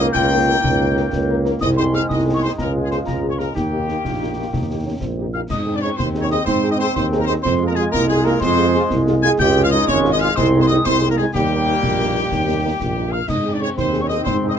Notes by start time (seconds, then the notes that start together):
Already playing: D#3 A#3
0.13 C#2 F4 G5 G6, concert bass drum, snare
0.31 A#3 D#4 A#4
0.48 A#3 D#4 A#4
0.63 C#2 D#4, concert bass drum, snare
0.80 A#3 D#4 A#4
0.95 A#3 D#4 A#4, snare
1.12 C#2 A#3, concert bass drum, snare
1.29 A#3 D#4 A#4
1.44 A#3 D#4 A#4, snare
1.60 C2 D#3 G#3 C4 D#5 D#6, concert bass drum, snare, crash
1.76 C4 D#4 G#4 C5 C6
1.92 C4 D#4 G#4 F5 F6, snare
2.09 C2 D#4 D#5 D#6, concert bass drum, snare
2.25 C4 D#4 G#4
2.34 C#5 C#6
2.42 C4 D#4 G#4 C5 C6
2.58 C#2 F3 F4 A#4 A#5, concert bass drum, snare
2.75 A#3 F4 G#4
2.82 G#4 G#5
2.91 A#3 F4 G#4 C5 C6, snare
3.06 C#2 A#4 A#5, concert bass drum, snare
3.22 A#3 F4 G#4
3.30 C#5 C#6
3.38 A#3 F4 G#4 A#4 A#5, snare
3.55 D#2 D#3 A#3 D#4 G4 G5, concert bass drum, snare
3.71 A#3 D#4 G4
3.88 A#3 D#4 G4, snare
4.04 A#1 D#4, concert bass drum, snare
4.21 A#3 D#4 G4
4.37 A#3 D#4 F4 G4
4.53 D#2 D#4, concert bass drum, snare
4.69 A#3 D#4 G4
4.85 A#3 C#4 D#4 G4
5.01 A#1 C4, concert bass drum, snare
5.18 A#3 D#4 G4
5.34 A#3 D#4 F4 G4 F5 F6
5.48 G#2 D#3 C4 D#4 D#5 D#6, concert bass drum, snare, crash
5.66 C4 D#4 G#4
5.74 D4 D5 D6
5.81 C4 C#4 D#4 G#4 C#5 C#6
5.97 D#2 C4 C5 C6, concert bass drum, snare
6.15 C4 D#4 G#4, snare
6.21 C#4 C#5 C#6
6.29 C4 D#4 G#4 D#5 D#6, snare
6.46 G#2 C4 C5 C6, concert bass drum, snare
6.64 C4 D#4 G#4
6.70 D#4 D#5 D#6
6.77 C4 D#4 G#4 C5 C6, snare
6.93 D#2 C4 C5 C6, concert bass drum, snare
7.12 C4 D#4 G#4, snare
7.18 A#3 A#4 A#5
7.25 C4 D#4 G#4 C5 C6, snare
7.42 F2 F3 G#3 C4 C5 C6, concert bass drum, snare, crash
7.61 G#3 F4 G#4
7.67 A#3 A#4 A#5
7.75 G#3 F4 G#4 G#5
7.91 C2 A#3 A#4 A#5, concert bass drum, snare
8.08 G#3 F4 G#4 G#5, snare
8.24 G#3 A#3 F4 G#4 A#4 A#5, snare
8.40 F2 C4 C5 C6, concert bass drum, snare
8.58 G#3 F4 G#4
8.74 G#3 F4 G#4, snare
8.89 C2, concert bass drum, snare
9.07 G#3 F4 G#4, snare
9.22 G#3 F4 G#4 G#5 G#6, snare
9.39 C#2 F3 G#3 G4 G5 G6, concert bass drum, snare, crash
9.55 G#3 F4 G#4
9.63 F4 F5 F6
9.71 G#3 D#4 F4 G#4 D#5 D#6
9.88 G#1 C#4 C#5 C#6, concert bass drum, snare
10.04 G#3 F4 G#4, snare
10.12 D#4 D#5 D#6
10.20 G#3 F4 G#4 F5 F6, snare
10.36 C2 D#3 C4 C5 C6, concert bass drum, snare
10.53 C4 D#4 G#4
10.61 C4 C5 C6
10.67 C4 D#4 G#4 D#5 D#6, snare
10.85 C2 C4 C5 C6, concert bass drum, snare
11.00 C4 D#4 G#4, snare
11.10 A#3 A#4 A#5
11.17 G#3 C4 D#4 G#4 G#5, snare
11.33 D#2 D#3 G3 A#3 G4 G5, concert bass drum, snare, crash
11.49 A#3 D#4 A#4
11.65 A#3 D#4 A#4
11.82 A#1, concert bass drum, snare
11.97 A#3 D#4 A#4, snare
12.14 A#3 D#4 A#4, snare
12.31 D#2, concert bass drum, snare
12.46 A#3 D#4 A#4
12.63 A#3 D#4 A#4
12.79 A#1, concert bass drum, snare
12.97 A#3 D#4 A#4
13.11 A#3 D#4 F4 A#4 F5 F6
13.28 G#2 D#3 C4 D#4 D#5 D#6, concert bass drum, snare, crash
13.44 C4 D#4 G#4
13.52 D4 D5 D6
13.59 C4 C#4 D#4 G#4 C#5 C#6
13.76 D#2 C4 C5 C6, concert bass drum, snare
13.93 C4 D#4 G#4, snare
14.01 C#4 C#5 C#6
14.08 C4 D#4 G#4 D#5 D#6, snare
14.24 G#2 C4 C5 C6, concert bass drum, snare
14.42 C4 D#4 G#4
14.49 D#4 D#5 D#6
14.56 C5